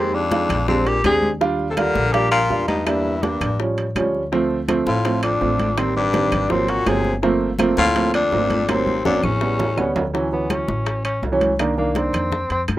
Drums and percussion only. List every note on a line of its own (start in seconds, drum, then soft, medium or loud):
0.13 high conga soft
0.31 high bongo medium
0.31 high conga loud
0.31 high timbale medium
0.50 high bongo soft
0.50 high conga soft
0.50 low conga medium
0.50 high timbale medium
0.50 claves medium
0.68 high bongo medium
0.68 high conga soft
0.68 low conga medium
0.86 high bongo soft
0.86 high conga soft
0.86 high timbale medium
1.04 high bongo soft
1.04 low bongo medium
1.04 high conga medium
1.04 high timbale medium
1.04 claves medium
1.23 high bongo soft
1.23 high conga medium
1.41 high bongo medium
1.41 high conga soft
1.59 high conga soft
1.77 high bongo medium
1.77 high conga loud
1.77 high timbale medium
1.77 claves medium
1.95 high bongo soft
1.95 high conga medium
2.14 high bongo medium
2.14 high conga soft
2.14 high timbale medium
2.32 high conga soft
2.32 high timbale medium
2.32 claves medium
2.50 high bongo soft
2.50 low bongo medium
2.50 high conga soft
2.68 high bongo soft
2.68 high conga medium
2.68 high timbale medium
2.87 high bongo medium
2.87 high conga soft
2.87 high timbale medium
2.87 claves medium
3.05 high conga soft
3.23 high bongo medium
3.23 high conga loud
3.23 high timbale medium
3.41 high bongo soft
3.41 high conga soft
3.41 low conga medium
3.41 high timbale medium
3.41 claves medium
3.59 high bongo medium
3.59 high conga soft
3.77 high bongo soft
3.77 high conga soft
3.77 high timbale medium
3.96 high bongo soft
3.96 low bongo medium
3.96 high conga medium
3.96 high timbale medium
3.96 claves medium
4.14 high bongo soft
4.32 high bongo medium
4.32 high conga soft
4.51 high conga soft
4.69 high bongo medium
4.69 high conga loud
4.69 high timbale medium
4.69 claves medium
4.87 high bongo soft
4.87 high conga medium
5.05 high bongo medium
5.05 high conga soft
5.05 high timbale medium
5.23 high bongo soft
5.23 high conga soft
5.23 high timbale medium
5.23 claves medium
5.41 high bongo soft
5.41 low bongo medium
5.41 high conga soft
5.59 high bongo soft
5.59 high conga medium
5.59 high timbale medium
5.78 high bongo medium
5.78 high conga soft
5.78 high timbale medium
5.78 claves medium
5.96 high conga soft
6.14 high bongo medium
6.14 high conga loud
6.14 high timbale medium
6.32 high bongo soft
6.32 high conga soft
6.32 low conga medium
6.32 high timbale medium
6.32 claves medium
6.50 high bongo medium
6.50 high conga soft
6.50 low conga medium
6.68 high bongo soft
6.68 high conga soft
6.68 high timbale medium
6.86 high bongo soft
6.86 low bongo medium
6.86 high conga medium
6.86 high timbale medium
6.86 low timbale medium
6.86 claves medium
7.04 high bongo soft
7.04 high conga medium
7.22 high bongo medium
7.22 high conga soft
7.41 high conga soft
7.59 high bongo medium
7.59 high conga loud
7.59 high timbale medium
7.59 claves medium
7.77 high bongo soft
7.77 high conga loud
7.95 high bongo medium
7.95 high conga soft
7.95 high timbale medium
8.14 high bongo soft
8.14 high conga soft
8.14 high timbale medium
8.14 claves medium
8.32 high bongo soft
8.32 low bongo medium
8.32 high conga soft
8.32 low timbale medium
8.50 high bongo soft
8.50 high conga medium
8.50 high timbale medium
8.69 high bongo medium
8.69 high conga medium
8.69 high timbale loud
8.69 claves medium
8.87 high conga medium
9.05 high bongo medium
9.05 low conga medium
9.05 high timbale medium
9.23 high bongo soft
9.23 low conga medium
9.23 claves medium
9.41 high bongo medium
9.59 high bongo soft
9.59 low conga medium
9.59 low timbale medium
9.78 high bongo soft
9.78 low bongo medium
9.78 low timbale medium
9.78 claves medium
9.96 high bongo soft
9.96 low conga medium
9.96 low timbale loud
10.14 high bongo medium
10.14 high conga soft
10.32 high conga soft
10.50 high bongo medium
10.50 high conga loud
10.50 high timbale medium
10.50 claves medium
10.68 high bongo soft
10.68 high conga medium
10.86 high bongo medium
10.86 high conga soft
10.86 high timbale medium
11.04 high bongo soft
11.04 high conga soft
11.04 high timbale medium
11.04 claves medium
11.23 high bongo soft
11.23 low bongo medium
11.23 high conga soft
11.23 low timbale medium
11.41 high bongo soft
11.41 high conga medium
11.41 high timbale medium
11.59 high bongo medium
11.59 high conga soft
11.59 high timbale medium
11.59 claves medium
11.77 high conga soft
11.95 high bongo medium
11.95 high conga loud
11.95 high timbale medium
12.14 high bongo soft
12.14 high conga soft
12.14 low conga medium
12.14 high timbale medium
12.14 claves medium
12.32 high bongo medium
12.32 high conga soft
12.32 low conga medium
12.50 high bongo soft
12.50 high conga soft
12.50 high timbale medium
12.68 high bongo soft
12.68 low bongo medium
12.68 high conga medium
12.68 high timbale medium
12.68 claves medium